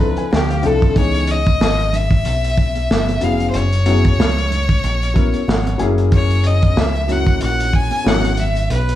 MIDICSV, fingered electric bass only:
0, 0, Header, 1, 3, 480
1, 0, Start_track
1, 0, Tempo, 645161
1, 713, Time_signature, 4, 2, 24, 8
1, 6661, End_track
2, 0, Start_track
2, 0, Title_t, "Fingered electric bass"
2, 0, Program_c, 0, 33
2, 0, Note_on_c, 0, 37, 81
2, 119, Note_off_c, 0, 37, 0
2, 243, Note_on_c, 0, 38, 91
2, 466, Note_off_c, 0, 38, 0
2, 482, Note_on_c, 0, 36, 70
2, 706, Note_off_c, 0, 36, 0
2, 716, Note_on_c, 0, 37, 82
2, 1171, Note_off_c, 0, 37, 0
2, 1199, Note_on_c, 0, 32, 86
2, 1653, Note_off_c, 0, 32, 0
2, 1680, Note_on_c, 0, 35, 88
2, 2133, Note_off_c, 0, 35, 0
2, 2159, Note_on_c, 0, 31, 88
2, 2384, Note_off_c, 0, 31, 0
2, 2397, Note_on_c, 0, 29, 66
2, 2623, Note_off_c, 0, 29, 0
2, 2638, Note_on_c, 0, 30, 93
2, 3092, Note_off_c, 0, 30, 0
2, 3116, Note_on_c, 0, 37, 82
2, 3571, Note_off_c, 0, 37, 0
2, 3598, Note_on_c, 0, 34, 89
2, 3957, Note_off_c, 0, 34, 0
2, 4075, Note_on_c, 0, 32, 90
2, 4303, Note_off_c, 0, 32, 0
2, 4316, Note_on_c, 0, 30, 82
2, 5005, Note_off_c, 0, 30, 0
2, 5039, Note_on_c, 0, 37, 82
2, 5492, Note_off_c, 0, 37, 0
2, 5520, Note_on_c, 0, 34, 88
2, 5878, Note_off_c, 0, 34, 0
2, 5994, Note_on_c, 0, 32, 83
2, 6450, Note_off_c, 0, 32, 0
2, 6473, Note_on_c, 0, 35, 97
2, 6661, Note_off_c, 0, 35, 0
2, 6661, End_track
3, 0, Start_track
3, 0, Title_t, "Muted fingered electric bass strokes"
3, 144, Note_on_c, 9, 29, 43
3, 219, Note_off_c, 9, 29, 0
3, 6661, End_track
0, 0, End_of_file